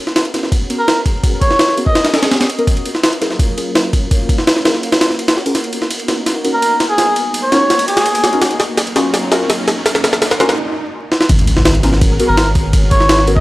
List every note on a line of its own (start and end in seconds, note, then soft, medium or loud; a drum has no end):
0.07 1.22 B3 loud
0.07 1.21 C#4 medium
0.07 1.21 F#4 medium
0.07 1.21 G#4 medium
0.07 1.21 A#4 loud
0.07 snare soft
0.16 snare loud
0.16 ride medium
0.25 ride soft
0.34 0.68 B3 medium
0.34 0.68 C#4 medium
0.34 0.68 F#4 medium
0.34 0.68 A#4 medium
0.34 snare soft
0.34 ride medium
0.43 snare soft
0.52 kick loud
0.52 ride medium
0.70 0.83 B3 medium
0.70 0.83 C#4 medium
0.70 0.83 F#4 medium
0.70 0.83 A#4 medium
0.70 ride medium
0.79 1.00 A#4 medium
0.88 snare loud
0.88 ride medium
1.06 kick medium
1.06 ride medium
1.23 1.48 B3 loud
1.23 1.48 C#4 medium
1.23 1.48 F#4 medium
1.23 1.48 G#4 medium
1.23 1.48 A#4 loud
1.23 kick loud
1.23 ride medium
1.41 1.77 C#5 medium
1.41 kick medium
1.41 ride medium
1.51 2.65 B3 loud
1.51 2.65 C#4 medium
1.51 2.65 F#4 medium
1.51 2.65 G#4 medium
1.51 2.65 A#4 loud
1.51 snare soft
1.59 snare loud
1.59 ride medium
1.69 snare soft
1.77 1.86 B3 medium
1.77 1.86 C#4 medium
1.77 1.86 F#4 medium
1.77 1.86 A#4 loud
1.77 ride medium
1.86 2.22 D#5 medium
1.86 kick medium
1.95 snare medium
1.95 ride medium
2.05 snare loud
2.05 ride medium
2.14 snare loud
2.14 ride medium
2.23 snare loud
2.23 ride medium
2.31 snare loud
2.31 ride medium
2.41 snare loud
2.41 ride medium
2.50 ride medium
2.58 2.66 B3 medium
2.58 2.66 C#4 medium
2.58 2.66 F#4 medium
2.58 2.66 A#4 medium
2.58 ride soft
2.67 2.92 A#3 medium
2.67 2.92 C#4 medium
2.67 2.92 F4 medium
2.67 2.92 F#4 medium
2.67 2.92 A#4 loud
2.67 kick loud
2.67 ride medium
2.77 ride soft
2.85 ride medium
2.94 4.09 F#3 medium
2.94 4.09 A#3 loud
2.94 4.09 C#4 medium
2.94 4.09 F4 medium
2.94 4.09 A#4 loud
2.94 snare soft
3.03 snare loud
3.03 ride medium
3.13 ride soft
3.21 3.55 C#4 medium
3.21 3.55 F4 medium
3.21 3.55 G#4 medium
3.21 3.55 A#4 medium
3.21 snare soft
3.21 ride medium
3.31 snare soft
3.39 kick loud
3.39 ride medium
3.57 3.70 C#4 medium
3.57 3.71 F4 medium
3.57 3.71 G#4 medium
3.57 3.71 A#4 medium
3.57 ride medium
3.75 snare loud
3.75 ride medium
3.93 kick medium
3.93 ride medium
4.11 4.36 A#3 loud
4.11 4.36 C#4 medium
4.11 4.36 F4 medium
4.11 4.36 F#4 medium
4.11 4.36 A#4 loud
4.11 kick loud
4.11 ride medium
4.29 kick medium
4.29 ride medium
4.38 5.35 A#3 loud
4.38 5.35 C#4 medium
4.38 5.35 F4 medium
4.38 5.35 F#4 medium
4.38 5.35 A#4 loud
4.38 snare soft
4.47 snare loud
4.47 ride medium
4.56 snare soft
4.65 4.73 C#4 medium
4.65 4.73 F4 medium
4.65 4.73 G#4 medium
4.65 4.73 A#4 loud
4.65 snare loud
4.65 ride medium
4.75 snare soft
4.83 ride medium
4.92 snare loud
4.92 ride medium
5.01 snare loud
5.01 ride medium
5.10 snare soft
5.19 ride medium
5.28 snare loud
5.28 ride medium
5.37 5.53 A#3 medium
5.37 5.52 C#4 medium
5.37 5.52 F4 medium
5.37 5.53 F#4 medium
5.37 5.53 A#4 medium
5.37 snare soft
5.46 5.54 C#4 medium
5.46 5.54 F4 medium
5.46 5.54 G#4 medium
5.46 5.54 A#4 medium
5.46 ride medium
5.54 5.79 A#3 loud
5.54 5.79 B3 medium
5.54 5.79 D#4 medium
5.54 5.79 F#4 medium
5.54 5.79 A#4 loud
5.54 snare soft
5.54 ride medium
5.54 riser medium
5.64 ride soft
5.73 ride medium
5.82 6.96 A#3 loud
5.82 6.96 B3 medium
5.82 6.96 D#4 medium
5.82 6.96 F#4 medium
5.82 6.96 A#4 loud
5.82 snare soft
5.91 ride medium
5.99 ride soft
6.08 6.42 C#4 medium
6.08 6.42 D#4 medium
6.08 6.42 F#4 medium
6.08 6.42 A#4 medium
6.08 snare soft
6.08 ride medium
6.26 snare medium
6.26 ride medium
6.44 6.58 C#4 medium
6.44 6.58 D#4 medium
6.44 6.58 F#4 medium
6.44 6.58 A#4 medium
6.44 ride medium
6.53 6.75 A#4 medium
6.62 ride medium
6.80 snare medium
6.80 ride medium
6.89 7.16 G#4 medium
6.98 7.23 A#3 loud
6.98 7.23 B3 medium
6.98 7.23 D#4 medium
6.98 7.23 F#4 medium
6.98 7.23 A#4 loud
6.98 snare medium
6.98 ride medium
7.16 ride medium
7.25 8.40 A#3 loud
7.25 8.40 B3 medium
7.25 8.40 D#4 medium
7.25 8.40 F#4 loud
7.25 8.40 A#4 loud
7.34 ride medium
7.43 7.86 C#5 medium
7.52 7.60 C#4 medium
7.52 7.61 D#4 medium
7.52 7.61 F#4 medium
7.52 7.61 A#4 medium
7.52 snare medium
7.52 ride medium
7.70 snare medium
7.70 ride medium
7.79 ride medium
7.88 8.38 G#4 medium
7.88 ride medium
7.97 snare medium
7.97 ride medium
8.06 ride medium
8.15 ride medium
8.24 snare medium
8.24 ride medium
8.33 8.41 C#4 medium
8.33 8.41 D#4 medium
8.33 8.41 F#4 medium
8.33 8.41 A#4 loud
8.33 ride soft
8.41 8.67 A#3 loud
8.41 8.67 C#4 medium
8.41 8.67 D#4 medium
8.41 8.67 F#4 medium
8.41 8.67 A#4 loud
8.41 snare medium
8.41 ride medium
8.51 ride soft
8.60 snare medium
8.60 ride medium
8.69 9.84 F#3 medium
8.69 9.84 A#3 loud
8.69 9.84 C#4 medium
8.69 9.84 D#4 medium
8.69 9.84 A#4 loud
8.78 snare medium
8.78 ride medium
8.87 ride soft
8.96 9.30 C#4 medium
8.96 9.30 F4 medium
8.96 9.30 F#4 medium
8.96 9.30 A#4 medium
8.96 snare medium
8.96 ride medium
9.14 snare medium
9.14 ride medium
9.31 9.45 C#4 medium
9.31 9.45 F4 medium
9.31 9.45 F#4 medium
9.31 9.45 A#4 medium
9.31 snare medium
9.31 ride medium
9.50 snare medium
9.50 ride medium
9.68 snare medium
9.68 ride medium
9.85 10.11 A#3 loud
9.85 10.11 C#4 medium
9.85 10.11 D#4 medium
9.85 10.11 F#4 medium
9.85 10.11 A#4 loud
9.85 snare medium
9.85 ride medium
9.95 snare medium
10.04 snare medium
10.04 ride medium
10.13 10.58 A#3 loud
10.13 10.58 C#4 medium
10.13 10.58 D#4 medium
10.13 10.58 F#4 medium
10.13 10.58 A#4 loud
10.13 snare medium
10.22 snare loud
10.22 ride medium
10.31 snare medium
10.40 10.48 C#4 medium
10.40 10.48 F4 medium
10.40 10.48 F#4 medium
10.40 10.48 A#4 loud
10.40 snare loud
10.49 snare medium
11.12 snare medium
11.21 snare medium
11.29 12.18 G#1 loud
11.29 11.55 B3 loud
11.29 11.54 C#4 medium
11.29 11.55 F#4 loud
11.29 11.55 G#4 medium
11.29 11.54 A#4 loud
11.29 kick loud
11.29 ride medium
11.29 impact medium
11.39 ride soft
11.47 ride medium
11.57 12.71 B3 loud
11.57 12.71 C#4 loud
11.57 12.71 F#4 medium
11.57 12.71 G#4 loud
11.57 12.71 A#4 loud
11.57 snare medium
11.65 snare loud
11.65 ride medium
11.75 ride soft
11.83 12.17 B3 medium
11.83 12.17 C#4 medium
11.83 12.17 F#4 medium
11.83 12.17 A#4 medium
11.83 snare soft
11.83 ride medium
11.93 snare soft
12.01 kick loud
12.01 ride medium
12.20 12.33 B3 medium
12.20 12.33 C#4 medium
12.20 12.33 F#4 medium
12.20 12.33 A#4 medium
12.20 ride medium
12.28 13.40 G#1 medium
12.28 12.50 A#4 medium
12.37 snare loud
12.37 ride medium
12.55 kick medium
12.55 ride medium
12.73 12.98 B3 loud
12.73 12.98 C#4 medium
12.73 12.98 F#4 medium
12.73 12.98 G#4 medium
12.73 12.98 A#4 loud
12.73 kick loud
12.73 ride medium
12.91 13.27 C#5 loud
12.91 kick medium
12.91 ride medium
13.00 13.40 B3 loud
13.00 13.40 C#4 medium
13.00 13.40 F#4 medium
13.00 13.40 G#4 loud
13.00 13.40 A#4 loud
13.00 snare soft
13.09 snare loud
13.09 ride medium
13.18 snare soft
13.27 13.36 B3 medium
13.27 13.36 C#4 medium
13.27 13.36 F#4 medium
13.27 13.36 A#4 loud
13.27 ride medium
13.36 13.40 D#5 loud
13.36 kick loud